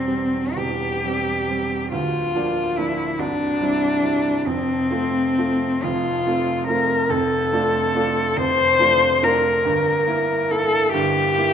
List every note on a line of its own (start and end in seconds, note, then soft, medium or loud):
0.00 0.57 E1 medium
0.00 0.57 E2 medium
0.00 0.08 G3 soft
0.00 0.08 C4 medium
0.00 0.58 C4 medium
0.08 0.53 G3 soft
0.08 0.53 C4 medium
0.56 1.02 E1 medium
0.56 1.02 E2 medium
0.56 1.91 G4 medium
1.04 1.44 G3 soft
1.04 1.45 C4 soft
1.49 1.88 G3 soft
1.49 1.88 C4 soft
1.92 2.34 D1 medium
1.92 2.34 D2 medium
1.92 2.79 F4 medium
2.36 2.74 F3 soft
2.36 2.74 A#3 soft
2.36 2.74 D4 medium
2.77 3.16 F3 medium
2.77 3.16 A#3 soft
2.77 3.16 D4 medium
2.77 3.21 E4 medium
3.19 3.60 C1 medium
3.19 3.59 C2 medium
3.19 4.49 D4 medium
3.61 3.99 G3 soft
3.61 3.99 C4 soft
3.61 3.99 E4 soft
4.02 4.42 G3 soft
4.02 4.42 C4 soft
4.02 4.42 E4 soft
4.46 4.90 F1 medium
4.46 4.89 F2 medium
4.46 5.85 C4 medium
4.91 5.33 A3 medium
4.91 5.33 C4 medium
4.91 5.34 F4 medium
5.38 5.79 A3 medium
5.38 5.80 C4 soft
5.38 5.80 F4 medium
5.83 6.25 F1 medium
5.83 6.25 F2 medium
5.83 6.67 F4 medium
6.27 6.64 A3 soft
6.27 6.64 C4 medium
6.27 6.64 F4 medium
6.67 7.06 A3 medium
6.67 7.06 C4 soft
6.67 7.06 F4 medium
6.67 7.11 A#4 medium
7.09 7.51 F1 medium
7.09 7.51 F2 medium
7.09 8.39 A4 medium
7.53 7.91 A3 medium
7.53 7.92 D4 medium
7.53 7.92 F4 medium
7.95 8.34 A3 medium
7.95 8.34 D4 medium
7.95 8.34 F4 medium
8.37 8.79 F1 medium
8.37 8.79 F2 medium
8.37 9.25 C5 loud
8.79 9.19 A3 soft
8.79 9.19 D4 medium
8.79 9.20 F4 medium
9.23 9.61 A3 medium
9.23 9.61 D4 medium
9.23 9.62 F4 medium
9.23 10.52 A#4 medium
9.65 10.06 G1 medium
9.65 10.06 G2 medium
10.07 10.46 A#3 medium
10.07 10.46 E4 medium
10.51 10.90 A#3 medium
10.51 10.90 E4 medium
10.51 10.92 A4 loud
10.93 11.37 G1 medium
10.93 11.37 G2 medium
10.93 11.53 G4 loud
11.38 11.53 A#3 medium
11.38 11.53 E4 medium